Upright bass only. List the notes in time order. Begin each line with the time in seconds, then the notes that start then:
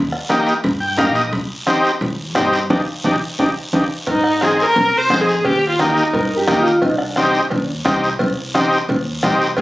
0.64 G2
0.98 A#1
1.32 C2
2.01 D#2
2.35 G2
2.70 C2
3.05 C2
3.39 C2
3.73 C2
4.07 G#2
4.76 C3
5.10 F2
5.45 D#2
6.13 G2
6.48 D#2
6.82 C2
7.51 D#2
7.85 C2
8.20 C2
8.89 D#2
9.23 C2
9.58 G#1